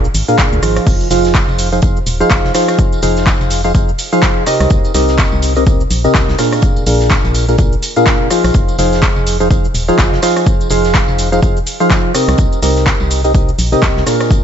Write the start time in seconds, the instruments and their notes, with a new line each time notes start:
0.04 shaker
0.15 fm bass G#1, closed hi-hat, open hi-hat, shaker
0.28 synth stab A#2 D4 F4 G#4 A#4 F5, closed hi-hat, shaker
0.39 kick, snare, clap, closed hi-hat, shaker
0.52 fm bass D2, shaker
0.63 fm bass G#1, synth stab F3 D#4 F4 G#4 C5 F5, cross-stick, closed hi-hat, open hi-hat, shaker
0.76 cross-stick, open hi-hat, shaker
0.87 fm bass F1, kick, closed hi-hat, tambourine, crash, shaker
1.00 tambourine, shaker
1.10 fm bass F1, synth stab F3 D#4 F4 G#4 C5 F5, snare, closed hi-hat, open hi-hat, tambourine, shaker
1.25 snare, tambourine, shaker
1.34 kick, snare, clap, closed hi-hat, tambourine, shaker
1.48 fm bass F1, tambourine
1.59 closed hi-hat, open hi-hat, tambourine, shaker
1.72 synth stab F3 D#4 F4 G#4 C5 F5, closed hi-hat, tambourine, shaker
1.82 kick, closed hi-hat, tambourine, shaker
1.96 shaker
2.06 fm bass D#1, closed hi-hat, open hi-hat, tambourine, shaker
2.20 synth stab F3 D#4 F4 G#4 C5 F5, tambourine, shaker
2.30 fm bass F1, kick, snare, clap, closed hi-hat, tambourine, shaker
2.45 fm bass F1, snare
2.54 synth stab F3 D#4 F4 G#4 C5 F5, cross-stick, snare, open hi-hat, tambourine, shaker
2.68 cross-stick, tambourine, shaker
2.79 kick, closed hi-hat, tambourine, shaker
2.92 tambourine, shaker
3.03 fm bass F1, synth stab F3 D#4 F4 G#4 C5 F5, closed hi-hat, open hi-hat, tambourine, shaker
3.16 snare, tambourine, shaker
3.27 kick, snare, clap, closed hi-hat, tambourine, shaker
3.41 fm bass F1, closed hi-hat, tambourine
3.50 closed hi-hat, open hi-hat, tambourine, shaker
3.64 synth stab F3 D#4 F4 G#4 C5 F5, tambourine, shaker
3.75 synth stab F3 D#4 F4 G#4 C5, kick, closed hi-hat, tambourine, shaker
3.89 shaker
3.98 closed hi-hat, open hi-hat, tambourine, shaker
4.12 synth stab F3 D#4 F4 G#4 C5 F5, closed hi-hat, tambourine, shaker
4.23 kick, snare, clap, closed hi-hat, tambourine, shaker
4.47 synth stab C3 C4 D#4 G4 A#4 D#5, cross-stick, closed hi-hat, open hi-hat, tambourine, shaker
4.60 fm bass C2, cross-stick, open hi-hat, tambourine, shaker
4.70 fm bass C2, kick, closed hi-hat, tambourine, shaker
4.84 tambourine, shaker
4.94 fm bass C2, synth stab C3 C4 D#4 G4 A#4 D#5, snare, closed hi-hat, open hi-hat, tambourine, shaker
5.08 snare, tambourine, shaker
5.18 kick, snare, clap, closed hi-hat, tambourine, shaker
5.32 fm bass C2, tambourine
5.42 closed hi-hat, open hi-hat, tambourine, shaker
5.56 synth stab C3 C4 D#4 G4 A#4 D#5, closed hi-hat, tambourine, shaker
5.66 synth stab C3, kick, closed hi-hat, tambourine, shaker
5.80 shaker
5.91 fm bass A#1, closed hi-hat, open hi-hat, tambourine, shaker
6.04 synth stab C3 C4 D#4 G4 A#4 D#5, tambourine, shaker
6.15 fm bass C2, kick, snare, clap, closed hi-hat, tambourine, shaker
6.28 fm bass C2, snare
6.38 synth stab A#2 D4 F4 G#4 A#4 F5, cross-stick, snare, open hi-hat, tambourine, shaker
6.52 cross-stick, tambourine, shaker
6.62 kick, closed hi-hat, tambourine, shaker
6.76 tambourine, shaker
6.86 fm bass A#1, synth stab A#2 D4 F4 G#4 A#4 F5, closed hi-hat, open hi-hat, tambourine, shaker
7.00 snare, tambourine, shaker
7.11 kick, snare, clap, closed hi-hat, tambourine, shaker
7.24 fm bass A#1, closed hi-hat, tambourine
7.35 closed hi-hat, open hi-hat, tambourine, shaker
7.48 synth stab A#2 D4 F4 G#4 A#4 F5, tambourine, shaker
7.58 synth stab D4 F4 G#4 F5, kick, closed hi-hat, tambourine, shaker
7.72 shaker
7.83 closed hi-hat, open hi-hat, tambourine, shaker
7.96 synth stab A#2 D4 F4 G#4 A#4 F5, closed hi-hat, tambourine, shaker
8.07 kick, snare, clap, closed hi-hat, tambourine, shaker
8.30 synth stab F3 D#4 F4 G#4 C5 F5, cross-stick, closed hi-hat, open hi-hat, tambourine, shaker
8.44 fm bass A#1, cross-stick, open hi-hat, tambourine, shaker
8.54 fm bass F1, kick, closed hi-hat, tambourine, shaker
8.68 tambourine, shaker
8.79 fm bass F1, synth stab F3 D#4 F4 G#4 C5 F5, snare, closed hi-hat, open hi-hat, tambourine, shaker
8.92 snare, tambourine, shaker
9.02 kick, snare, clap, closed hi-hat, tambourine, shaker
9.16 fm bass F1, tambourine
9.26 closed hi-hat, open hi-hat, tambourine, shaker
9.40 synth stab F3 D#4 F4 G#4 C5 F5, closed hi-hat, tambourine, shaker
9.51 synth stab D#4 F4 G#4 C5 F5, kick, closed hi-hat, tambourine, shaker
9.65 shaker
9.74 fm bass D#1, closed hi-hat, open hi-hat, tambourine, shaker
9.88 synth stab F3 D#4 F4 G#4 C5 F5, tambourine, shaker
9.99 fm bass F1, kick, snare, clap, closed hi-hat, tambourine, shaker
10.12 fm bass F1, snare
10.22 synth stab F3 D#4 F4 G#4 C5 F5, cross-stick, snare, open hi-hat, tambourine, shaker
10.36 cross-stick, tambourine, shaker
10.46 kick, closed hi-hat, tambourine, shaker
10.61 tambourine, shaker
10.70 fm bass F1, synth stab F3 D#4 F4 G#4 C5 F5, closed hi-hat, open hi-hat, tambourine, shaker
10.84 snare, tambourine, shaker
10.95 kick, snare, clap, closed hi-hat, shaker
11.08 fm bass F1, closed hi-hat, tambourine
11.19 closed hi-hat, open hi-hat, tambourine, shaker
11.32 synth stab F3 D#4 F4 G#4 C5 F5, tambourine, shaker
11.42 kick, closed hi-hat, tambourine, shaker
11.56 shaker
11.67 closed hi-hat, open hi-hat, tambourine, shaker
11.80 synth stab F3 D#4 F4 G#4 C5 F5, closed hi-hat, tambourine, shaker
11.90 kick, snare, clap, closed hi-hat, tambourine, shaker
12.14 synth stab C3 C4 D#4 G4 A#4 D#5, cross-stick, closed hi-hat, open hi-hat, tambourine, shaker
12.28 fm bass C2, cross-stick, open hi-hat, tambourine, shaker
12.38 fm bass C2, kick, closed hi-hat, tambourine, shaker
12.52 tambourine, shaker
12.62 fm bass C2, synth stab C3 C4 D#4 G4 A#4 D#5, snare, closed hi-hat, open hi-hat, tambourine, shaker
12.76 snare, tambourine, shaker
12.86 kick, snare, clap, closed hi-hat, tambourine, shaker
13.00 fm bass C2, tambourine
13.10 closed hi-hat, open hi-hat, tambourine, shaker
13.24 synth stab C3 C4 D#4 G4 A#4 D#5, closed hi-hat, tambourine, shaker
13.34 synth stab D#4 G4 A#4 D#5, kick, closed hi-hat, tambourine, shaker
13.49 shaker
13.59 fm bass A#1, closed hi-hat, open hi-hat, tambourine, shaker
13.72 synth stab C3 C4 D#4 G4 A#4 D#5, tambourine, shaker
13.83 fm bass C2, kick, snare, clap, closed hi-hat, tambourine, shaker
13.97 fm bass C2, snare
14.06 synth stab A#2 D4 F4 G#4 A#4 F5, cross-stick, snare, open hi-hat, tambourine, shaker
14.20 cross-stick, tambourine, shaker
14.31 kick, closed hi-hat, tambourine, shaker